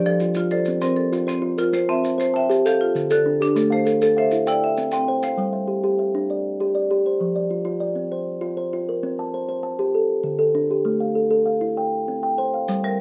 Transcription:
0.00 0.22 F3 medium
0.00 0.22 D5 medium
0.06 0.37 F3 medium
0.06 0.50 A4 medium
0.06 0.51 D5 medium
0.20 0.35 F4 medium
0.20 maracas soft
0.35 0.67 F4 medium
0.35 0.82 F4 medium
0.35 maracas medium
0.51 0.82 A4 medium
0.51 0.97 C5 medium
0.51 0.98 D5 medium
0.65 0.98 C4 medium
0.65 maracas medium
0.81 1.13 C4 medium
0.81 1.28 A#4 medium
0.81 1.26 C5 medium
0.81 maracas medium
0.96 1.43 A4 medium
1.13 1.41 F4 medium
1.13 maracas soft
1.27 1.58 C4 medium
1.27 1.73 C5 medium
1.27 1.72 C5 medium
1.27 maracas medium
1.42 1.73 F4 medium
1.58 1.89 F4 medium
1.58 1.89 A#4 medium
1.58 maracas medium
1.73 2.04 C4 medium
1.73 2.04 C5 medium
1.73 maracas medium
1.89 2.19 C4 medium
1.89 2.35 E5 medium
1.89 2.33 A5 medium
2.04 2.17 C5 medium
2.04 maracas medium
2.18 2.49 C5 medium
2.18 2.65 C5 medium
2.18 maracas medium
2.34 2.66 E5 medium
2.34 2.81 G5 medium
2.34 2.80 A5 medium
2.50 2.65 G4 medium
2.50 maracas medium
2.65 2.81 G4 medium
2.65 3.09 A4 medium
2.65 2.96 F5 medium
2.65 maracas medium
2.81 3.26 F4 medium
2.95 3.25 D3 medium
2.95 maracas medium
3.10 3.42 D3 medium
3.10 3.56 A4 medium
3.10 3.57 A4 medium
3.10 maracas medium
3.26 3.56 D4 medium
3.41 3.72 D4 medium
3.41 3.71 G4 medium
3.41 maracas medium
3.56 3.86 A3 medium
3.56 3.87 A4 medium
3.56 maracas medium
3.70 4.02 A3 medium
3.70 4.17 C5 medium
3.70 4.15 F5 medium
3.85 4.01 A4 medium
3.85 maracas medium
4.02 4.32 A4 medium
4.02 4.48 A4 medium
4.02 maracas medium
4.17 4.48 C5 medium
4.17 4.63 E5 medium
4.17 4.62 F5 medium
4.31 4.47 E4 medium
4.31 maracas medium
4.47 4.63 E4 medium
4.47 4.78 D5 medium
4.47 4.91 G5 medium
4.47 maracas medium
4.64 5.09 E5 medium
4.77 5.08 C4 medium
4.77 maracas soft
4.91 5.24 C4 medium
4.91 5.38 G5 medium
4.91 5.37 G5 medium
4.91 maracas medium
5.08 5.39 C5 medium
5.23 5.54 C5 medium
5.23 5.54 F5 medium
5.23 maracas medium
5.37 5.68 G3 medium
5.37 5.69 G5 medium
5.53 5.98 E5 medium
5.68 5.82 G4 medium
5.84 6.14 G4 medium
5.99 6.45 E5 medium
6.15 6.45 D4 medium
6.30 6.74 D5 medium
6.60 6.90 G4 medium
6.75 7.21 D5 medium
6.91 7.21 G4 medium
7.06 7.36 C5 medium
7.20 7.51 F3 medium
7.36 7.79 D5 medium
7.50 7.64 F4 medium
7.65 7.96 F4 medium
7.80 8.27 D5 medium
7.96 8.27 C4 medium
8.12 8.56 C5 medium
8.41 8.72 F4 medium
8.57 9.03 C5 medium
8.73 9.04 F4 medium
8.89 9.19 A#4 medium
9.03 9.34 C4 medium
9.19 9.62 A5 medium
9.34 9.47 C5 medium
9.49 9.80 C5 medium
9.63 10.10 A5 medium
9.79 9.95 G4 medium
9.95 10.38 A4 medium
10.24 10.55 D3 medium
10.39 10.86 A4 medium
10.55 10.86 D4 medium
10.71 11.01 G4 medium
10.85 11.16 A3 medium
11.00 11.44 F5 medium
11.15 11.29 A4 medium
11.31 11.62 A4 medium
11.46 11.92 F5 medium
11.61 11.77 E4 medium
11.77 12.22 G5 medium
12.08 12.39 C4 medium
12.23 12.69 G5 medium
12.38 12.69 C5 medium
12.54 12.85 F5 medium
12.68 13.00 G3 medium
12.68 maracas medium
12.84 13.01 G3 medium
12.84 13.01 A#4 medium
12.84 13.01 E5 medium

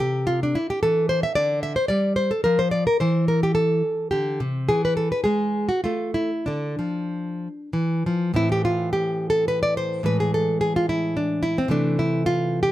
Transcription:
0.00 0.53 C3 medium
0.00 0.27 G4 medium
0.27 0.42 F4 medium
0.43 0.57 D4 medium
0.55 0.70 E4 medium
0.70 0.82 G4 medium
0.83 1.23 E3 medium
0.83 1.09 A4 medium
1.09 1.23 C5 medium
1.23 1.35 E5 medium
1.35 1.75 D3 medium
1.35 1.62 D5 medium
1.63 1.76 E5 medium
1.76 1.88 C5 medium
1.88 2.30 G3 medium
1.88 2.16 D5 medium
2.16 2.31 C5 medium
2.31 2.43 A4 medium
2.44 2.85 F3 medium
2.44 2.59 A#4 medium
2.59 2.71 C5 medium
2.71 2.86 D5 medium
2.87 3.00 A#4 medium
3.00 3.82 E3 medium
3.00 3.27 C5 medium
3.28 3.43 A#4 medium
3.43 3.54 G4 medium
3.55 4.09 A4 medium
4.11 4.39 D3 medium
4.11 4.39 G4 medium
4.40 4.68 C3 medium
4.69 5.11 E3 medium
4.69 4.84 G#4 medium
4.85 4.96 B4 medium
4.97 5.11 A4 medium
5.12 5.23 B4 medium
5.24 5.67 G#3 medium
5.24 5.66 G#4 medium
5.69 5.83 F#4 medium
5.84 6.30 A3 medium
5.84 6.14 F4 medium
6.14 6.46 E4 medium
6.46 6.78 D3 medium
6.46 7.69 D4 medium
6.79 7.47 F3 medium
7.73 8.04 E3 medium
8.06 8.34 F3 medium
8.34 10.02 A2 medium
8.34 10.02 E3 soft
8.34 10.03 C4 soft
8.34 8.51 E4 medium
8.52 8.64 G4 medium
8.65 8.92 F4 medium
8.93 9.29 G4 medium
9.30 9.48 A4 medium
9.48 9.62 B4 medium
9.63 9.77 D5 medium
9.77 10.05 C5 medium
10.03 11.66 A2 medium
10.03 11.66 E3 soft
10.03 11.67 G#3 soft
10.03 10.20 B4 medium
10.20 10.34 G#4 medium
10.34 10.60 A4 medium
10.61 10.75 G#4 medium
10.76 10.89 F4 medium
10.89 11.16 E4 medium
11.17 11.43 D4 medium
11.43 11.57 E4 medium
11.58 11.71 C4 medium
11.68 12.72 C3 medium
11.68 12.72 E3 soft
11.68 12.72 A3 soft
11.68 11.98 D4 medium
11.99 12.26 E4 medium
12.26 12.61 F4 medium
12.63 12.72 G4 medium

